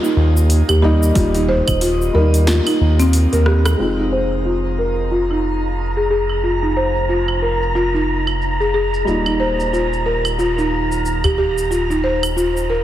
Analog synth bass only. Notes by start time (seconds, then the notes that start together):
0.17 D#2
0.69 D#2
1.16 D#1
1.68 D#1
2.14 D#2
2.81 D#2
3.33 D#2
3.79 F1
9.07 D#1